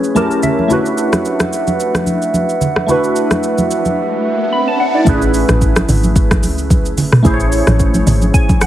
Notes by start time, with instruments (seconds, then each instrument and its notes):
Already playing: synth keys A3 C#4 E4 G#4 B4, glass harmonica C#4 G#4 C#5, downlifter
0.04 shaker
0.15 synth keys A3 C#4 E4 G4 A#4 A5, glass harmonica G4 A#4 C#5, high conga, shaker
0.31 shaker
0.43 synth keys E5, low conga, shaker
0.59 high conga
0.68 synth keys A3 D4 E4 F#4, glass harmonica D4 B4 E5 F#5, low conga, shaker
0.73 synth keys B4
0.86 shaker
0.98 shaker
1.13 cross-stick, high conga, shaker
1.25 shaker
1.40 cross-stick, high conga, shaker
1.53 shaker
1.67 high conga, shaker
1.80 shaker
1.94 cross-stick, high conga, shaker
2.06 high conga, shaker
2.22 shaker
2.34 high conga, shaker
2.49 shaker
2.61 low conga, shaker
2.76 cross-stick, high conga
2.86 synth keys A3 D4 E4 F#4, riser, low conga, shaker
2.91 synth keys B4
3.04 shaker
3.16 shaker
3.31 cross-stick, high conga, shaker
3.43 shaker
3.58 high conga, shaker
3.71 shaker
3.85 high conga, shaker
4.53 synth keys B5
4.68 synth keys A5
4.80 synth keys F#5
4.95 synth keys D5
5.05 log drum bass A1, synth keys A3 C#4 E4 G#4, kick, low conga, shaker
5.09 synth keys B4
5.22 shaker
5.34 open hi-hat, shaker
5.49 log drum bass A1, cross-stick, high conga, shaker
5.62 kick, shaker
5.76 cross-stick, high conga, shaker
5.89 log drum bass G#1, open hi-hat, low conga, shaker
6.03 high conga, shaker
6.16 kick, shaker
6.31 kick, cross-stick, high conga, shaker
6.43 log drum bass C#2, open hi-hat, high conga, shaker
6.58 shaker
6.70 kick, high conga, shaker
6.86 shaker
6.98 log drum bass G#1, open hi-hat, low conga, shaker
7.12 cross-stick, mid tom
7.23 log drum bass A1, synth keys A3 C#4 E4 G#4, kick, low conga, shaker
7.27 synth keys C5
7.34 synth keys C#5
7.40 shaker
7.52 open hi-hat, shaker
7.67 log drum bass A1, cross-stick, high conga, shaker
7.80 kick, shaker
7.94 high conga, shaker
8.07 log drum bass G#1, open hi-hat, low conga, shaker
8.22 high conga, shaker
8.34 synth keys G#5, kick, shaker
8.49 kick, high conga, shaker
8.61 synth keys F#5, cross-stick, open hi-hat, high conga, shaker